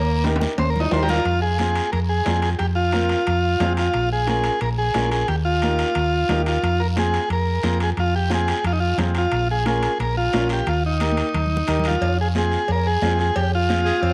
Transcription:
Already playing: D#2 A#3
0.24 D#4 G4 A#4, high conga, high timbale, short guiro
0.36 high timbale
0.41 high conga, short guiro
0.58 D#2 C5, cowbell, high conga, high timbale, long guiro
0.70 A#4
0.76 low conga
0.80 D#4, low timbale
0.91 D#2 D#4 G4 A#4 C5, low conga, low timbale, short guiro
1.03 G4 A#4, low timbale
1.09 F4, low conga, short guiro
1.14 low timbale
1.25 F2, high conga, high timbale, long guiro
1.42 G#4
1.59 C4 F4 G#4, high conga, high timbale, short guiro
1.76 high timbale, short guiro
1.92 F2 A#4, high conga, high timbale, long guiro
2.09 G#4
2.25 F2 C4 F4 G#4, high conga, high timbale, low timbale, short guiro
2.42 G#4, high timbale, short guiro
2.59 F2 G4, high conga, high timbale, long guiro
2.75 F4
2.92 C4 F4 A#4, high conga, high timbale, short guiro
3.09 high timbale, short guiro
3.27 F2, high conga, high timbale, long guiro
3.60 F2 C4 F4 G#4, high conga, low conga, high timbale, low timbale, short guiro
3.77 F4, high timbale, short guiro
3.94 A#1, high conga, high timbale, long guiro
4.13 G#4
4.26 C#4 F4 G#4 A#4, high conga, high timbale, short guiro
4.44 high timbale, short guiro
4.61 A#1 A#4, high conga, high timbale, long guiro
4.78 G#4
4.94 A#1 C#4 F4 A#4, high conga, high timbale, low timbale, short guiro
5.12 G#4, high timbale, short guiro
5.28 D#2 G4, high conga, high timbale, long guiro
5.45 F4
5.62 D#4 G4 A#4, high conga, high timbale, short guiro
5.79 high timbale, short guiro
5.95 D#2, high conga, high timbale, long guiro
6.29 D#2 D#4 G4 A#4, high conga, low conga, high timbale, low timbale, short guiro
6.46 F4, high timbale, short guiro
6.62 F2, high conga, high timbale, long guiro
6.80 A#4
6.96 C4 F4 G#4, high conga, high timbale, short guiro
7.14 high timbale, short guiro
7.30 F2 A#4, high conga, high timbale, long guiro
7.63 F2 C4 F4 G#4, high conga, high timbale, short guiro
7.80 G#4, high timbale, short guiro
7.97 F2 F4, high conga, high timbale, long guiro
8.16 G4
8.30 C4 F4 G#4, high conga, high timbale, short guiro
8.34 G#4
8.48 G#4, high timbale, short guiro
8.64 F2 F4, high conga, high timbale, long guiro
8.73 D#4
8.80 F4
8.98 F2 C4 F4 G#4, high conga, low conga, high timbale, short guiro
9.14 F4, high timbale, short guiro
9.32 A#1, high conga, high timbale, long guiro
9.51 G#4
9.65 C#4 F4 G#4 A#4, high conga, high timbale, short guiro
9.83 high timbale, short guiro
9.99 A#1 A#4, high conga, high timbale, long guiro
10.17 F4
10.33 A#1 C#4 F4 A#4, high conga, high timbale, low timbale, short guiro
10.49 G4, high timbale, short guiro
10.66 D#2 F4, high conga, high timbale, long guiro
10.86 D#4
11.00 D#4 G4 A#4, high conga, high timbale, short guiro
11.12 high conga
11.17 high timbale, short guiro
11.34 D#2, low conga, high timbale, long guiro
11.46 low conga
11.57 low conga
11.67 D#2 D#4 G4 A#4, low conga, high timbale, short guiro
11.79 low conga
11.84 F4, high timbale, short guiro
11.91 low conga
12.01 F2, cowbell, high conga, long guiro
12.21 G#4
12.35 C4 F4 G#4, high conga, short guiro
12.52 short guiro
12.68 F2 A#4, cowbell, high conga, long guiro
12.87 G#4
13.02 F2 C4 F4 G#4, high conga, low timbale, short guiro
13.19 G#4, short guiro
13.35 F2 G4, cowbell, high conga, long guiro
13.55 F4
13.69 C4 F4 G#4, high conga, short guiro
13.85 G#4, short guiro
14.02 F2 C4, cowbell, long guiro

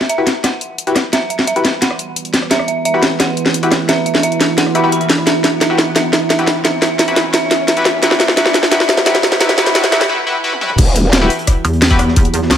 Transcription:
Already playing: E4 G4 B4 F#5, riser
0.01 snare
0.09 E5, closed hi-hat
0.18 E4 F#4 G4 B4
0.27 snare, closed hi-hat
0.44 F#5, cross-stick, snare, closed hi-hat
0.61 closed hi-hat
0.78 closed hi-hat
0.87 E4 F#4 G4 B4, closed hi-hat
0.96 cross-stick, snare, closed hi-hat
1.13 E5, snare, closed hi-hat
1.30 E5, closed hi-hat
1.39 snare
1.47 E5, closed hi-hat
1.56 E4 F#4 G4 B4, closed hi-hat
1.65 snare, closed hi-hat
1.82 F#5, snare, closed hi-hat
1.91 cross-stick
1.99 closed hi-hat
2.16 closed hi-hat
2.25 closed hi-hat
2.34 snare, closed hi-hat
2.42 cross-stick
2.51 E5 B5, snare, closed hi-hat
2.59 cross-stick
2.68 E5, closed hi-hat
2.85 E5, closed hi-hat
2.94 E4 F#4 G4 B4
3.03 snare, closed hi-hat
3.20 F#5, cross-stick, snare, closed hi-hat
3.37 closed hi-hat
3.46 snare
3.54 closed hi-hat
3.63 E4 F#4 G4 B4, closed hi-hat
3.72 cross-stick, snare, closed hi-hat
3.89 E5, snare, closed hi-hat
4.06 E5, closed hi-hat
4.15 snare
4.23 E5, closed hi-hat
4.32 closed hi-hat
4.41 snare, closed hi-hat
4.58 F#5, snare, closed hi-hat
4.66 cross-stick
4.75 E4 F#4 G4 B4 E5, closed hi-hat
4.84 E4 F#4 G4 B4
4.92 B5, closed hi-hat
5.01 closed hi-hat
5.10 snare, closed hi-hat
5.18 cross-stick
5.27 E5 G5, snare, closed hi-hat
5.44 E5, snare, closed hi-hat
5.61 E5, snare, closed hi-hat
5.70 E4 F#4 G4 B4
5.78 snare, closed hi-hat
5.96 E5, snare, closed hi-hat
6.13 E5, snare, closed hi-hat
6.30 E5, snare, closed hi-hat
6.39 E4 F#4 G4 B4, closed hi-hat
6.47 snare, closed hi-hat
6.65 E5, snare, closed hi-hat
6.82 E5, snare, closed hi-hat
6.99 E5, snare, closed hi-hat
7.08 E4 F#4 G4 B4, closed hi-hat
7.16 snare, closed hi-hat
7.34 E5, snare, closed hi-hat
7.51 E5, snare, closed hi-hat
7.68 E5, snare, closed hi-hat
7.77 E4 F#4 G4 B4, closed hi-hat
7.85 snare, closed hi-hat
8.03 E4 F#4 G4 B4 E5 A5, snare, closed hi-hat
8.11 snare
8.20 E5, snare, closed hi-hat
8.28 snare
8.37 E4 F#4 G4 B4 E5, snare, closed hi-hat
8.46 snare
8.54 E5, snare, closed hi-hat
8.63 snare
8.72 E4 F#4 G4 B4 E5, snare, closed hi-hat
8.80 snare
8.89 E5, snare, closed hi-hat
8.97 snare
9.06 E4 F#4 G4 B4 E5, snare, closed hi-hat
9.15 snare, closed hi-hat
9.23 E5, snare, closed hi-hat
9.32 snare
9.40 E4 F#4 G4 B4 E5, snare, closed hi-hat
9.49 snare, closed hi-hat
9.58 E4 F#4 G4 B4 E5, snare, closed hi-hat
9.66 snare, closed hi-hat
9.75 E4 F#4 G4 B4 E5, snare, closed hi-hat
9.84 snare, closed hi-hat
9.92 E4 F#4 G4 B4 E5, snare, closed hi-hat
10.01 snare
10.09 E4 F#4 G4 B4
10.27 E4 F#4 G4 B4
10.44 E4 F#4 G4 B4
10.53 high tom
10.61 E4 F#4 G4 B4, mid tom
10.70 mid tom
10.78 E1 E4 F#4 G4, kick, closed hi-hat, crash
10.96 closed hi-hat
11.13 snare, closed hi-hat
11.22 E4 F#4 G4 B4
11.30 closed hi-hat
11.39 closed hi-hat
11.47 kick, cross-stick, closed hi-hat
11.64 E2, closed hi-hat
11.73 closed hi-hat
11.82 snare, closed hi-hat
11.90 E4 F#4 G4 B4, kick, closed hi-hat
11.99 cross-stick, closed hi-hat, open hi-hat
12.08 snare
12.16 kick, closed hi-hat
12.25 closed hi-hat
12.34 closed hi-hat
12.42 snare
12.50 D2, snare, closed hi-hat

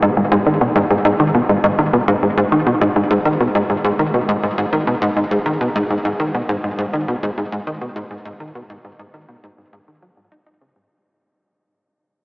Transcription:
0.02 G#2
0.17 G#2
0.32 G#2
0.46 D#3
0.61 B2
0.76 G#2
0.90 G#2
1.05 G#2
1.20 D#3
1.35 B2
1.49 G#2
1.64 G#2
1.79 D#3
1.93 B2
2.08 G#2
2.23 G#2
2.37 G#2
2.52 D#3
2.67 B2
2.81 G#2
2.96 G#2
3.11 G#2
3.25 D#3
3.40 B2
3.55 G#2
3.70 G#2
3.84 G#2
3.99 D#3
4.14 B2
4.29 G#2
4.43 G#2
4.58 G#2
4.73 D#3
4.87 B2
5.02 G#2
5.17 G#2
5.31 G#2
5.46 D#3
5.61 B2
5.76 G#2
5.90 G#2
6.05 G#2
6.20 D#3
6.35 B2
6.49 G#2
6.64 G#2
6.79 G#2
6.93 D#3
7.08 B2
7.23 G#2
7.37 G#2
7.52 G#2
7.67 D#3
7.81 B2
7.96 G#2
8.11 G#2
8.25 G#2
8.40 D#3
8.55 B2
8.70 G#2
8.84 G#2
8.99 G#2
9.14 D#3
9.28 B2
9.44 G#2
9.58 G#2
9.73 G#2
9.88 D#3
10.02 F#3
10.17 G#2
10.32 D#4
10.46 D#4
10.61 C#3
10.76 G#2

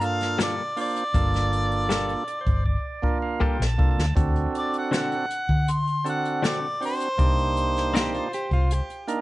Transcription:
Already playing: G2
0.00 A#3 D4 F4 A4, closed hi-hat
0.05 F5
0.21 snare, closed hi-hat
0.38 G3 A#3 F4 A4, snare, closed hi-hat
0.43 D5
0.76 A#3 D4 F4 C5, open hi-hat
0.81 D5
0.96 closed hi-hat
1.14 G1 A#3 D4 F4 A4, kick, closed hi-hat
1.34 snare, closed hi-hat
1.52 closed hi-hat
1.71 closed hi-hat
1.89 G3 A#3 F4 A4, snare, closed hi-hat
2.09 closed hi-hat
2.27 D5, closed hi-hat
2.41 C5
2.47 G1, kick, closed hi-hat
2.66 D5, kick
3.02 A#3 D4 F4 A#4, kick
3.22 F5
3.40 G3 A#3 F4 A4 G5, kick
3.60 A#1, snare
3.66 A5
3.78 C2 A#3 D4 F4 A4, kick
3.91 A5
3.98 D2, snare
4.15 D2 C4 D4 F#4 A4, kick, closed hi-hat
4.36 closed hi-hat
4.55 D5, closed hi-hat
4.73 closed hi-hat
4.78 F#5
4.91 D3 C4 F#4 A4, snare, closed hi-hat
4.97 F#5
5.12 closed hi-hat
5.30 closed hi-hat
5.49 D3, kick
5.68 C6, closed hi-hat
5.87 closed hi-hat
6.04 C4 D4 F#4 A4, closed hi-hat
6.09 F#5
6.25 closed hi-hat
6.42 D3 C4 F#4 A4, snare, closed hi-hat
6.47 D5
6.81 C4 D4 F#4 C5, open hi-hat
6.85 C5
7.00 closed hi-hat
7.18 C2 A#3 D4 D#4 G4, kick, closed hi-hat
7.38 closed hi-hat
7.57 closed hi-hat
7.76 snare, closed hi-hat
7.94 C4 D#4 G4 A#4 D5, snare, closed hi-hat
8.14 F4, closed hi-hat
8.33 G4, closed hi-hat
8.51 C2 F4, kick, closed hi-hat
8.71 G4, closed hi-hat
8.90 closed hi-hat
9.08 A#3 D4 D#4 A#4, closed hi-hat

